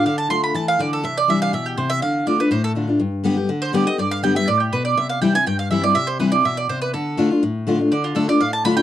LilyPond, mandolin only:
\new Staff \with { instrumentName = "Mandolin" } { \time 4/4 \key d \dorian \tempo 4 = 245 f''8 a''8 c'''8 b''8 a''8 f''8 d''8 a'8 | e''8 d''8 e''8 f''8 e''8 g'8 c''8 e''8 | f''4 d''8 b'8 c''8 a'8 r4 | r2 r8 c''8 d''8 ees''8 |
d''8 f''8 g''8 e''8 d''8 g'8 b'8 d''8 | e''8 f''8 g''8 gis''8 g''8 f''8 e''8 d''8 | e''8 c''8 b'8 d''8 e''8 d''8 c''8 b'8 | a'4. r2 r8 |
d''8 f'8 a'8 d''8 f''8 a''8 b''8 g''8 | }